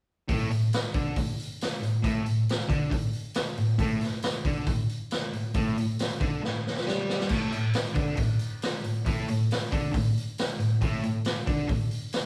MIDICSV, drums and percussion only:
0, 0, Header, 1, 2, 480
1, 0, Start_track
1, 0, Tempo, 438596
1, 315, Time_signature, 4, 2, 24, 8
1, 13414, End_track
2, 0, Start_track
2, 0, Title_t, "Drums"
2, 316, Note_on_c, 9, 46, 78
2, 317, Note_on_c, 9, 36, 102
2, 425, Note_off_c, 9, 46, 0
2, 427, Note_off_c, 9, 36, 0
2, 559, Note_on_c, 9, 46, 58
2, 668, Note_off_c, 9, 46, 0
2, 798, Note_on_c, 9, 46, 83
2, 812, Note_on_c, 9, 38, 109
2, 907, Note_off_c, 9, 46, 0
2, 921, Note_off_c, 9, 38, 0
2, 1027, Note_on_c, 9, 46, 61
2, 1033, Note_on_c, 9, 36, 108
2, 1136, Note_off_c, 9, 46, 0
2, 1143, Note_off_c, 9, 36, 0
2, 1270, Note_on_c, 9, 46, 83
2, 1275, Note_on_c, 9, 36, 90
2, 1379, Note_off_c, 9, 46, 0
2, 1385, Note_off_c, 9, 36, 0
2, 1526, Note_on_c, 9, 46, 59
2, 1636, Note_off_c, 9, 46, 0
2, 1764, Note_on_c, 9, 46, 82
2, 1778, Note_on_c, 9, 38, 107
2, 1873, Note_off_c, 9, 46, 0
2, 1888, Note_off_c, 9, 38, 0
2, 2004, Note_on_c, 9, 46, 54
2, 2113, Note_off_c, 9, 46, 0
2, 2233, Note_on_c, 9, 36, 102
2, 2233, Note_on_c, 9, 46, 77
2, 2343, Note_off_c, 9, 36, 0
2, 2343, Note_off_c, 9, 46, 0
2, 2473, Note_on_c, 9, 46, 56
2, 2583, Note_off_c, 9, 46, 0
2, 2727, Note_on_c, 9, 46, 78
2, 2742, Note_on_c, 9, 38, 113
2, 2837, Note_off_c, 9, 46, 0
2, 2851, Note_off_c, 9, 38, 0
2, 2951, Note_on_c, 9, 36, 107
2, 2957, Note_on_c, 9, 46, 59
2, 3061, Note_off_c, 9, 36, 0
2, 3067, Note_off_c, 9, 46, 0
2, 3190, Note_on_c, 9, 36, 94
2, 3196, Note_on_c, 9, 46, 77
2, 3299, Note_off_c, 9, 36, 0
2, 3305, Note_off_c, 9, 46, 0
2, 3426, Note_on_c, 9, 46, 50
2, 3535, Note_off_c, 9, 46, 0
2, 3660, Note_on_c, 9, 46, 77
2, 3674, Note_on_c, 9, 38, 117
2, 3769, Note_off_c, 9, 46, 0
2, 3783, Note_off_c, 9, 38, 0
2, 3912, Note_on_c, 9, 46, 53
2, 4021, Note_off_c, 9, 46, 0
2, 4147, Note_on_c, 9, 36, 109
2, 4148, Note_on_c, 9, 46, 70
2, 4256, Note_off_c, 9, 36, 0
2, 4257, Note_off_c, 9, 46, 0
2, 4388, Note_on_c, 9, 46, 59
2, 4402, Note_on_c, 9, 38, 33
2, 4497, Note_off_c, 9, 46, 0
2, 4511, Note_off_c, 9, 38, 0
2, 4624, Note_on_c, 9, 46, 82
2, 4638, Note_on_c, 9, 38, 113
2, 4733, Note_off_c, 9, 46, 0
2, 4747, Note_off_c, 9, 38, 0
2, 4870, Note_on_c, 9, 36, 108
2, 4872, Note_on_c, 9, 46, 64
2, 4979, Note_off_c, 9, 36, 0
2, 4981, Note_off_c, 9, 46, 0
2, 5106, Note_on_c, 9, 46, 87
2, 5110, Note_on_c, 9, 36, 95
2, 5215, Note_off_c, 9, 46, 0
2, 5219, Note_off_c, 9, 36, 0
2, 5356, Note_on_c, 9, 46, 56
2, 5466, Note_off_c, 9, 46, 0
2, 5590, Note_on_c, 9, 46, 79
2, 5604, Note_on_c, 9, 38, 103
2, 5699, Note_off_c, 9, 46, 0
2, 5713, Note_off_c, 9, 38, 0
2, 5836, Note_on_c, 9, 46, 57
2, 5946, Note_off_c, 9, 46, 0
2, 6064, Note_on_c, 9, 46, 81
2, 6072, Note_on_c, 9, 36, 109
2, 6174, Note_off_c, 9, 46, 0
2, 6181, Note_off_c, 9, 36, 0
2, 6320, Note_on_c, 9, 46, 60
2, 6430, Note_off_c, 9, 46, 0
2, 6557, Note_on_c, 9, 46, 82
2, 6571, Note_on_c, 9, 38, 107
2, 6666, Note_off_c, 9, 46, 0
2, 6680, Note_off_c, 9, 38, 0
2, 6791, Note_on_c, 9, 46, 56
2, 6795, Note_on_c, 9, 36, 106
2, 6901, Note_off_c, 9, 46, 0
2, 6904, Note_off_c, 9, 36, 0
2, 7054, Note_on_c, 9, 38, 65
2, 7164, Note_off_c, 9, 38, 0
2, 7299, Note_on_c, 9, 38, 71
2, 7405, Note_off_c, 9, 38, 0
2, 7405, Note_on_c, 9, 38, 69
2, 7515, Note_off_c, 9, 38, 0
2, 7531, Note_on_c, 9, 38, 87
2, 7640, Note_off_c, 9, 38, 0
2, 7763, Note_on_c, 9, 38, 95
2, 7872, Note_off_c, 9, 38, 0
2, 7883, Note_on_c, 9, 38, 86
2, 7980, Note_on_c, 9, 49, 92
2, 7992, Note_off_c, 9, 38, 0
2, 7993, Note_on_c, 9, 36, 101
2, 8089, Note_off_c, 9, 49, 0
2, 8102, Note_off_c, 9, 36, 0
2, 8233, Note_on_c, 9, 46, 57
2, 8342, Note_off_c, 9, 46, 0
2, 8465, Note_on_c, 9, 46, 80
2, 8479, Note_on_c, 9, 38, 116
2, 8574, Note_off_c, 9, 46, 0
2, 8588, Note_off_c, 9, 38, 0
2, 8702, Note_on_c, 9, 46, 61
2, 8711, Note_on_c, 9, 36, 101
2, 8811, Note_off_c, 9, 46, 0
2, 8821, Note_off_c, 9, 36, 0
2, 8940, Note_on_c, 9, 46, 82
2, 8952, Note_on_c, 9, 36, 92
2, 9049, Note_off_c, 9, 46, 0
2, 9061, Note_off_c, 9, 36, 0
2, 9184, Note_on_c, 9, 46, 59
2, 9293, Note_off_c, 9, 46, 0
2, 9434, Note_on_c, 9, 46, 81
2, 9449, Note_on_c, 9, 38, 115
2, 9544, Note_off_c, 9, 46, 0
2, 9558, Note_off_c, 9, 38, 0
2, 9676, Note_on_c, 9, 46, 60
2, 9785, Note_off_c, 9, 46, 0
2, 9915, Note_on_c, 9, 46, 79
2, 9918, Note_on_c, 9, 36, 108
2, 10024, Note_off_c, 9, 46, 0
2, 10027, Note_off_c, 9, 36, 0
2, 10159, Note_on_c, 9, 46, 65
2, 10268, Note_off_c, 9, 46, 0
2, 10406, Note_on_c, 9, 46, 81
2, 10420, Note_on_c, 9, 38, 103
2, 10515, Note_off_c, 9, 46, 0
2, 10529, Note_off_c, 9, 38, 0
2, 10641, Note_on_c, 9, 36, 99
2, 10644, Note_on_c, 9, 46, 60
2, 10751, Note_off_c, 9, 36, 0
2, 10753, Note_off_c, 9, 46, 0
2, 10879, Note_on_c, 9, 46, 81
2, 10880, Note_on_c, 9, 36, 93
2, 10988, Note_off_c, 9, 46, 0
2, 10990, Note_off_c, 9, 36, 0
2, 11135, Note_on_c, 9, 46, 55
2, 11245, Note_off_c, 9, 46, 0
2, 11361, Note_on_c, 9, 46, 79
2, 11375, Note_on_c, 9, 38, 111
2, 11470, Note_off_c, 9, 46, 0
2, 11485, Note_off_c, 9, 38, 0
2, 11600, Note_on_c, 9, 46, 53
2, 11710, Note_off_c, 9, 46, 0
2, 11838, Note_on_c, 9, 36, 99
2, 11838, Note_on_c, 9, 46, 68
2, 11947, Note_off_c, 9, 36, 0
2, 11947, Note_off_c, 9, 46, 0
2, 12076, Note_on_c, 9, 46, 55
2, 12185, Note_off_c, 9, 46, 0
2, 12308, Note_on_c, 9, 46, 74
2, 12322, Note_on_c, 9, 38, 115
2, 12418, Note_off_c, 9, 46, 0
2, 12432, Note_off_c, 9, 38, 0
2, 12557, Note_on_c, 9, 36, 111
2, 12559, Note_on_c, 9, 46, 57
2, 12666, Note_off_c, 9, 36, 0
2, 12669, Note_off_c, 9, 46, 0
2, 12794, Note_on_c, 9, 46, 73
2, 12798, Note_on_c, 9, 36, 101
2, 12903, Note_off_c, 9, 46, 0
2, 12907, Note_off_c, 9, 36, 0
2, 13035, Note_on_c, 9, 46, 56
2, 13145, Note_off_c, 9, 46, 0
2, 13270, Note_on_c, 9, 46, 86
2, 13284, Note_on_c, 9, 38, 114
2, 13379, Note_off_c, 9, 46, 0
2, 13394, Note_off_c, 9, 38, 0
2, 13414, End_track
0, 0, End_of_file